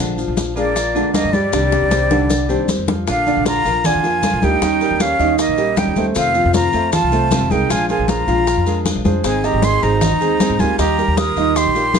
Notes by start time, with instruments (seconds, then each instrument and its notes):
Already playing: grand piano D3
0.00 upright bass A#1, nylon-string guitar F3 G#3 D4 F4
0.18 grand piano F3 F4, high conga, maracas
0.28 upright bass A#1
0.37 high bongo, high conga, maracas
0.56 grand piano G#3 G#4, nylon-string guitar G#3 D4 F4, trumpet A#3, flute D5, high conga, maracas
0.76 grand piano F3 F4, muted nylon-string guitar stroke, high bongo, high conga, maracas
0.95 grand piano D3 D4, nylon-string guitar G#3 D4 F4, high conga, maracas
1.13 nylon-string guitar F3 G#3 D4 F4, trumpet A#3, flute D#5, high bongo, low bongo, high conga, maracas
1.24 upright bass G2
1.32 trumpet G3, grand piano G3 G4, flute D5, high conga, maracas
1.52 upright bass C2, nylon-string guitar C3 D#3 G3 D4 G4, grand piano D4, high bongo, maracas
1.72 high bongo, high conga, maracas
1.82 upright bass C2
1.91 grand piano C4 C5, high bongo, high conga, maracas
2.10 grand piano D3 D4, nylon-string guitar D#3 G3 D4 G4, low bongo, maracas
2.30 muted nylon-string guitar stroke, low bongo, high conga, maracas
2.49 nylon-string guitar D#3 G3 D4 G4, grand piano C4 C5, high conga, maracas
2.68 nylon-string guitar D#3 G3 D4 G4, low bongo, high conga, maracas
2.78 upright bass F2
2.88 grand piano F3 F4, low bongo, high conga, maracas
3.07 upright bass A#1, nylon-string guitar D3 A#3 D4 F4, trumpet D4, flute F5, high bongo, high conga, maracas
3.27 grand piano D3 D4 D5, high conga, maracas
3.37 upright bass A#1
3.46 trumpet F4, flute A#5, high bongo, high conga, maracas
3.65 upright bass A#1, grand piano F3 F4 A#4, nylon-string guitar A#3 D4 F4, high conga, maracas
3.84 grand piano D3 D4 D5, trumpet F4, flute G#5, muted nylon-string guitar stroke, high bongo, high conga, low conga, maracas
3.94 upright bass F2
4.03 grand piano F3 F4 A#4, nylon-string guitar A#3 D4 F4, high conga, maracas
4.23 nylon-string guitar D3 A#3 D4 F4, high bongo, low bongo, high conga, maracas
4.33 upright bass A#1
4.42 upright bass D2, grand piano G3 G4 A#4, nylon-string guitar A#3 D4 F4, trumpet D#4, flute G5, high conga, maracas
4.62 upright bass D#2, grand piano D#3 D#4 D#5, nylon-string guitar D#3 G3 C#4 G4, high bongo, high conga, maracas
4.81 grand piano G3 G4 A#4, high bongo, high conga, maracas
4.91 upright bass D#2
5.00 trumpet C#4, flute F5, high bongo, high conga, maracas
5.19 upright bass D#2, grand piano D#3 D#4 D#5, nylon-string guitar G3 C#4 G4, high bongo, maracas
5.38 trumpet A#3, flute D#5, muted nylon-string guitar stroke, high bongo, high conga, maracas
5.48 upright bass A#1
5.57 grand piano G3 G4 A#4, nylon-string guitar G3 C#4 G4, high conga, maracas
5.76 nylon-string guitar D#3 G3 C#4 G4, trumpet D#4, flute G5, high bongo, low bongo, high conga, maracas
5.87 upright bass D#2
5.96 upright bass D#2, nylon-string guitar G3 C#4 G4, grand piano A3 A4 C5, high bongo, high conga, maracas
6.15 upright bass F2, nylon-string guitar C3 D#3 A3 C4 F4, trumpet C4, flute F5, high bongo, maracas
6.34 grand piano F3 F4 F5, high conga, maracas
6.45 upright bass F2
6.54 trumpet F4, flute A#5, high bongo, high conga, maracas
6.73 upright bass F2, grand piano A3 A4 C5, nylon-string guitar A3 C4 F4, high conga, maracas
6.92 grand piano F3 F4 F5, trumpet F4, flute A5, muted nylon-string guitar stroke, high bongo, high conga, low conga, maracas
7.03 upright bass C2
7.12 grand piano A3 A4 C5, nylon-string guitar A3 C4 F4, high conga, maracas
7.31 nylon-string guitar C3 D#3 A3 C4 F4, high bongo, low bongo, high conga, maracas
7.41 upright bass F2
7.50 upright bass C2, grand piano G#3 G#4 A#4, nylon-string guitar A3 C4 F4, trumpet D#4, flute G5, high conga, maracas
7.69 upright bass A#1, nylon-string guitar F3 G#3 D4 F4, grand piano F3 F4 F5, trumpet F4, flute G#5, high bongo, high conga, maracas
7.89 grand piano G#3 G#4 A#4, trumpet F4, flute G#5, high bongo, high conga, maracas
7.99 upright bass A#1
8.08 trumpet F4, flute A#5, high bongo, high conga, maracas
8.27 upright bass A#1, grand piano F3 F4 F5, nylon-string guitar G#3 D4 F4, high bongo, maracas
8.46 muted nylon-string guitar stroke, high bongo, high conga, maracas
8.57 upright bass F2
8.66 grand piano G#3 G#4 A#4, nylon-string guitar G#3 D4 F4, high conga, maracas
8.85 nylon-string guitar F3 G#3 D4 F4, high bongo, low bongo, high conga, maracas
8.95 upright bass A#1
9.04 upright bass F2, grand piano G#3 G#4 C5, nylon-string guitar G#3 D4 F4, high bongo, high conga, maracas
9.24 upright bass G#1, nylon-string guitar D#3 G#3 C4 D#4 G#4, trumpet D#4, flute G#5, high bongo, high conga, maracas
9.43 grand piano D#3 D#4 D#5, trumpet G4, flute A#5, high conga, maracas
9.54 upright bass G#1
9.62 trumpet G#4, flute C6, high bongo, high conga, maracas
9.82 upright bass G#1, grand piano G#3 G#4 C5, nylon-string guitar C4 D#4 G#4, trumpet D#4, flute A#5, high conga, maracas
10.01 grand piano D#3 D#4 D#5, muted nylon-string guitar stroke, high bongo, high conga, low conga, maracas
10.11 upright bass D#2
10.21 grand piano G#3 G#4 C5, nylon-string guitar C4 D#4 G#4, high conga, maracas
10.40 nylon-string guitar D#3 G#3 C4 D#4 G#4, high bongo, low bongo, high conga, maracas
10.50 upright bass G#1
10.59 upright bass D2, grand piano G3 G4 A#4, nylon-string guitar C4 D#4 G#4, trumpet F4, flute G#5, high conga, maracas
10.78 upright bass D#2, nylon-string guitar D#3 G3 D#4 F4, grand piano D#3 D#4 D#5, trumpet G4, flute A#5, high bongo, high conga, maracas
10.98 grand piano G3 G4 A#4, high bongo, high conga, maracas
11.08 upright bass D#2
11.17 trumpet A#4, flute D#6, high bongo, high conga, maracas
11.36 upright bass D#2, grand piano D#3 D#4 D#5, nylon-string guitar G3 D#4 F4, high bongo, maracas
11.56 trumpet G4, flute C6, muted nylon-string guitar stroke, high bongo, high conga, maracas
11.66 upright bass A#1
11.75 grand piano G3 G4 A#4, nylon-string guitar G3 D#4 F4, high conga, maracas
11.94 nylon-string guitar D#3 G3 D#4 F4, high bongo, low bongo, high conga, maracas